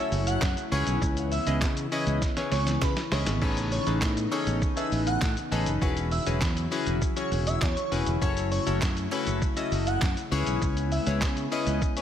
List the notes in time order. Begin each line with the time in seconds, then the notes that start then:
Already playing: C#3 F#3 A3 C#4 E4 F#4 A4 C#5
0.12 F#1, open hi-hat, shaker
0.27 F#5, closed hi-hat, shaker
0.42 F#2, kick, snare, clap, shaker
0.57 closed hi-hat, shaker
0.71 C#2 E3 B3 C#4 E4 G#4 B4 C#5, open hi-hat, shaker
0.87 B1, closed hi-hat, shaker
1.02 C#2, kick, shaker
1.17 closed hi-hat, shaker
1.32 E5, open hi-hat, shaker
1.47 C#2 C#4 E4 G#4 B4 D#5, closed hi-hat, shaker
1.62 C#3, kick, snare, clap, shaker
1.77 closed hi-hat, shaker
1.92 C#4 E4 G#4 B4 D#5, open hi-hat, shaker
2.07 C#2, closed hi-hat, shaker
2.22 kick, snare, shaker
2.37 C#4 E4 G#4 B4 C#5, snare, closed hi-hat, shaker
2.52 C#2 C#5, snare, open hi-hat, shaker
2.67 snare, closed hi-hat, shaker
2.82 C#3 B4, kick, snare, clap, shaker
2.97 snare, closed hi-hat, shaker
3.12 C#2 C#4 E4 G#4 B4 C#5 D#5, snare, open hi-hat, shaker
3.26 G#1, snare, closed hi-hat, shaker
3.42 A1 C#4 D#4 G#4 A4 B4, kick, crash
3.57 closed hi-hat, shaker
3.72 C#5, open hi-hat, shaker
3.87 A1 C#4 D#4 G#4 A4 B4, closed hi-hat, shaker
4.02 A2, kick, snare, clap, shaker
4.17 closed hi-hat, shaker
4.31 C#4 D#4 G#4 A4 C#5, clap, open hi-hat, shaker
4.47 A1, closed hi-hat, shaker
4.62 kick, shaker
4.76 C#4 D#4 G#4 A4 B4 E5, closed hi-hat, shaker
4.92 A1, open hi-hat, shaker
5.07 F#5, closed hi-hat, shaker
5.22 A2, kick, snare, clap, shaker
5.37 closed hi-hat, shaker
5.51 A1 C#4 D#4 G#4 A4 B4, open hi-hat, shaker
5.66 F#1, closed hi-hat, shaker
5.81 E1 C#3 F#3 C#4 E4 F#4 G#4 B4, kick, shaker
5.97 closed hi-hat, shaker
6.12 E5, open hi-hat, shaker
6.26 E1 C#4 E4 F#4 G#4 B4, closed hi-hat, shaker
6.41 E2, kick, snare, clap, shaker
6.57 closed hi-hat, shaker
6.71 C#4 E4 F#4 G#4 B4, open hi-hat, shaker
6.87 E1, closed hi-hat, shaker
7.02 kick, shaker
7.16 C#4 E4 F#4 G#4 C#5, closed hi-hat, shaker
7.31 E1, open hi-hat, shaker
7.47 E5, closed hi-hat, shaker
7.62 E2 C#5, kick, snare, clap, shaker
7.77 closed hi-hat, shaker
7.91 E1 C#4 E4 F#4 G#4 B4, open hi-hat, shaker
8.07 E1, closed hi-hat, shaker
8.21 F#1 F#3 A3 C#4 E4 F#4 A4 C#5, kick, shaker
8.37 closed hi-hat, shaker
8.51 C#5, open hi-hat, shaker
8.66 F#1 C#4 E4 F#4 A4 C#5, closed hi-hat, shaker
8.82 F#2, kick, snare, clap, shaker
8.97 closed hi-hat, shaker
9.12 C#4 E4 F#4 A4 B4, clap, open hi-hat, shaker
9.27 F#1, closed hi-hat, shaker
9.42 kick, shaker
9.56 C#4 E4 F#4 A4 D#5 E5, closed hi-hat, shaker
9.72 F#1, open hi-hat, shaker
9.87 F#5, closed hi-hat, shaker
10.02 F#2, kick, snare, clap, shaker
10.17 closed hi-hat, shaker
10.31 C#2 G#3 B3 C#4 E4 G#4 B4 C#5, open hi-hat, shaker
10.47 B1, closed hi-hat, shaker
10.62 C#2, kick, shaker
10.77 closed hi-hat, shaker
10.92 E5, open hi-hat, shaker
11.06 C#2 C#4 E4 G#4 B4 C#5, closed hi-hat, shaker
11.22 C#3, kick, snare, clap, shaker
11.37 closed hi-hat, shaker
11.51 C#4 E4 G#4 B4 D#5, open hi-hat, shaker
11.67 C#2, closed hi-hat, shaker
11.82 kick, shaker
11.97 C#4 E4 G#4 B4 C#5, closed hi-hat, shaker